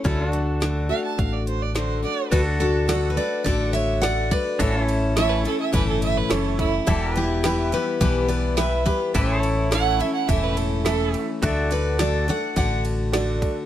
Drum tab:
RD |--------|xxxxxxxx|xxxxxxxx|xxxxxxxx|
HH |xxx-xxx-|--------|--------|--------|
SD |--o---o-|--o---o-|--o---o-|--o---o-|
BD |o---o---|o---o--o|o---o--o|o---o--o|

RD |xxxxxxxx|xxxxxxxx|
HH |--------|--------|
SD |--o---o-|--o---o-|
BD |o---o---|o---o--o|